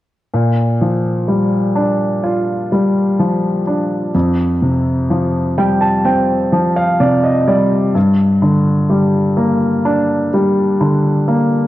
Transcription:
0.34 4.11 A#2 soft
0.81 2.68 F3 soft
1.28 2.71 G3 soft
1.75 3.62 D4 soft
2.24 4.10 F4 soft
2.72 4.11 G3 soft
3.19 4.12 F3 soft
3.67 4.13 D4 soft
4.14 7.91 F2 soft
4.62 6.49 C3 soft
5.10 6.51 F3 soft
5.58 7.44 G3 soft
5.58 5.80 G5 soft
5.81 6.03 A5 soft
6.05 7.91 C4 soft
6.05 6.72 G5 soft
6.52 7.91 F3 soft
6.76 6.99 F5 soft
7.00 7.92 C3 soft
7.00 7.22 D5 soft
7.24 7.46 D#5 soft
7.47 7.94 G3 soft
7.47 7.92 D5 soft
7.95 11.67 G2 soft
8.42 10.29 D3 soft
8.90 10.32 G3 soft
9.37 11.24 A#3 soft
9.85 11.67 D4 soft
10.34 11.67 G3 soft
10.80 11.67 D3 soft
11.28 11.67 A#3 soft

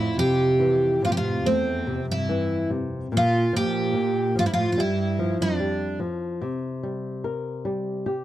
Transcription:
0.00 3.09 F2 medium
0.00 0.14 A2 medium
0.00 0.19 E4 medium
0.18 0.59 C3 soft
0.18 0.99 C3 medium
0.18 1.04 G4 medium
0.59 1.01 E3 soft
1.02 1.09 A2 medium
1.02 1.44 C3 soft
1.02 1.11 F4 medium
1.10 1.16 A#2 medium
1.10 1.17 G4 medium
1.16 1.43 A2 medium
1.16 1.46 F4 medium
1.46 2.05 E2 medium
1.46 1.86 A3 medium
1.46 2.05 C4 medium
1.87 2.28 C3 soft
2.09 2.68 G2 medium
2.09 2.69 E4 medium
2.29 2.70 E3 medium
2.70 3.11 C3 soft
3.12 3.93 A#2 medium
3.12 3.52 A#2 medium
3.17 3.54 F4 medium
3.53 4.34 A#2 medium
3.53 3.94 F3 soft
3.53 4.34 G4 medium
3.94 4.35 A#2 medium
4.35 4.44 A2 medium
4.35 4.76 F3 soft
4.35 4.45 F4 medium
4.45 4.51 G2 medium
4.45 4.52 E4 medium
4.54 4.73 A2 medium
4.54 4.71 F4 medium
4.72 4.79 A2 soft
4.72 4.79 F4 medium
4.78 5.37 G2 medium
4.78 5.18 G3 medium
4.78 5.37 E4 medium
5.19 5.59 F3 medium
5.41 5.98 F2 medium
5.41 5.98 D4 medium
5.60 6.00 G3 soft
6.00 6.40 F3 soft
6.42 8.24 C3 medium
6.83 7.23 G3 soft
7.24 7.65 A#4 soft
7.65 8.06 G3 soft
8.06 8.24 G4 medium

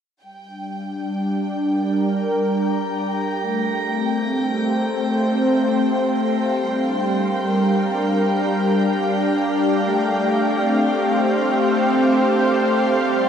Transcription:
0.23 3.42 G3 medium
0.23 13.29 G5 medium
0.44 4.38 D4 medium
0.59 13.29 F5 medium
0.97 13.29 G4 medium
1.68 3.43 A#4 medium
3.42 6.62 A3 medium
3.83 7.75 C4 medium
4.26 7.90 C5 medium
6.60 9.81 G3 medium
6.78 11.11 D4 medium
7.01 9.83 A#4 medium
9.83 13.02 A3 medium
10.45 13.29 C4 medium
11.07 13.29 C5 medium
13.03 13.29 G3 medium

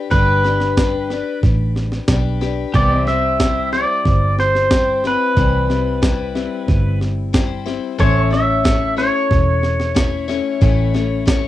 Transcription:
0.00 0.10 D4 soft
0.00 0.10 G4 medium
0.00 2.69 G4 medium
0.00 0.11 B4 medium
0.00 2.70 B4 medium
0.00 2.71 D5 medium
0.11 1.21 G1 medium
0.11 0.44 G3 medium
0.11 0.44 D4 medium
0.11 0.44 G4 medium
0.11 1.39 B4 medium
0.11 0.43 B4 medium
0.11 kick loud
0.11 snare soft
0.44 0.77 D4 soft
0.44 0.78 G4 soft
0.44 0.77 B4 soft
0.44 snare soft
0.60 snare soft
0.77 1.10 G3 medium
0.77 1.10 D4 medium
0.77 1.11 G4 medium
0.77 1.10 B4 medium
0.77 kick medium
0.77 snare medium
0.77 hi-hat pedal medium
1.10 2.08 D4 soft
1.10 2.10 G4 medium
1.10 2.09 B4 medium
1.10 snare soft
1.43 1.99 A1 medium
1.43 kick loud
1.43 snare soft
1.76 snare soft
1.92 snare soft
2.08 2.64 B1 medium
2.08 2.41 G3 medium
2.08 2.42 D4 medium
2.08 2.41 G4 medium
2.08 2.40 B4 medium
2.08 kick medium
2.08 snare loud
2.08 hi-hat pedal medium
2.41 2.74 D4 soft
2.41 2.74 G4 medium
2.41 2.74 B4 medium
2.41 snare soft
2.74 3.84 C2 medium
2.74 3.07 C3 medium
2.74 3.07 E3 medium
2.74 3.07 G3 medium
2.74 2.96 B3 medium
2.74 3.07 C4 medium
2.74 3.07 E4 medium
2.74 7.95 G4 medium
2.74 3.06 C5 medium
2.74 3.07 D5 medium
2.74 3.01 D5 medium
2.74 kick loud
2.74 snare soft
2.96 7.96 C4 medium
3.01 7.96 E5 medium
3.07 3.39 G3 soft
3.07 3.39 C4 soft
3.07 3.40 E4 soft
3.07 3.40 C5 soft
3.07 3.69 E5 medium
3.07 snare soft
3.40 3.73 G3 medium
3.40 3.73 C4 medium
3.40 3.72 E4 medium
3.40 3.71 C5 medium
3.40 kick medium
3.40 snare loud
3.40 hi-hat pedal medium
3.73 4.69 G3 soft
3.73 4.70 C4 soft
3.73 4.71 E4 soft
3.73 4.71 C5 soft
3.73 4.40 D5 medium
3.73 snare soft
4.06 5.15 G1 medium
4.06 kick loud
4.06 snare soft
4.39 5.06 C5 medium
4.39 snare soft
4.55 snare soft
4.70 5.04 G3 medium
4.70 5.04 C4 medium
4.70 5.03 E4 medium
4.70 5.05 C5 medium
4.70 kick medium
4.70 snare loud
4.70 hi-hat pedal medium
5.04 5.36 G3 soft
5.04 5.36 C4 soft
5.04 5.36 E4 soft
5.04 6.98 B4 medium
5.04 snare soft
5.36 6.46 C2 medium
5.36 5.69 C3 medium
5.36 5.70 E3 medium
5.36 5.70 G3 medium
5.36 5.69 C4 medium
5.36 5.69 E4 medium
5.36 kick loud
5.36 snare soft
5.70 6.01 G3 soft
5.70 6.02 C4 soft
5.70 6.02 E4 soft
5.70 snare soft
6.02 6.35 G3 medium
6.02 6.34 C4 medium
6.02 6.34 E4 medium
6.02 kick medium
6.02 snare medium
6.02 hi-hat pedal medium
6.35 7.32 G3 soft
6.35 7.32 C4 soft
6.35 7.34 E4 medium
6.35 snare soft
6.68 7.78 G1 medium
6.68 kick loud
6.68 snare soft
7.01 snare soft
7.33 7.66 G3 medium
7.33 7.66 C4 medium
7.33 7.65 E4 medium
7.33 7.64 C5 medium
7.33 kick medium
7.33 snare loud
7.33 hi-hat pedal medium
7.66 7.98 G3 soft
7.66 7.99 C4 medium
7.66 7.98 E4 medium
7.66 7.99 C5 medium
7.66 snare soft
7.98 9.09 A1 medium
7.98 8.32 A2 medium
7.98 8.32 E3 medium
7.98 8.31 A3 medium
7.98 8.31 C#4 medium
7.98 8.30 E4 medium
7.98 11.48 A4 medium
7.98 8.21 C5 medium
7.98 8.29 C#5 medium
7.98 8.32 C#5 medium
7.98 11.48 E5 medium
7.98 kick loud
7.98 snare soft
8.21 11.48 C#5 medium
8.30 8.63 A3 soft
8.30 8.63 C#4 soft
8.30 8.64 E4 soft
8.30 8.64 C#5 soft
8.30 8.94 E5 medium
8.30 snare soft
8.64 8.97 A3 medium
8.64 8.97 C#4 medium
8.64 8.96 E4 medium
8.64 8.95 C#5 medium
8.64 kick medium
8.64 snare loud
8.64 hi-hat pedal medium
8.97 9.94 A3 soft
8.97 9.94 C#4 soft
8.97 9.95 E4 soft
8.97 9.95 C#5 soft
8.97 11.48 C#5 medium
8.97 snare soft
9.31 10.40 E1 medium
9.31 kick loud
9.31 snare soft
9.63 snare soft
9.80 snare soft
9.95 10.28 A3 medium
9.95 10.28 C#4 medium
9.95 10.28 E4 medium
9.95 10.27 C#5 medium
9.95 kick medium
9.95 snare loud
9.95 hi-hat pedal medium
10.28 10.60 A3 soft
10.28 10.60 C#4 soft
10.28 10.61 E4 medium
10.28 10.61 C#5 medium
10.28 snare soft
10.61 11.48 A1 medium
10.61 10.94 A2 medium
10.61 10.94 E3 medium
10.61 10.94 A3 medium
10.61 10.94 C#4 medium
10.61 10.94 E4 medium
10.61 10.93 C#5 medium
10.61 kick loud
10.61 snare soft
10.94 11.24 A3 soft
10.94 11.25 C#4 soft
10.94 11.26 E4 medium
10.94 11.27 C#5 medium
10.94 snare soft
11.26 11.48 A3 medium
11.26 11.48 C#4 medium
11.26 11.48 E4 medium
11.26 11.48 C#5 medium
11.26 kick medium
11.26 snare loud
11.26 hi-hat pedal medium

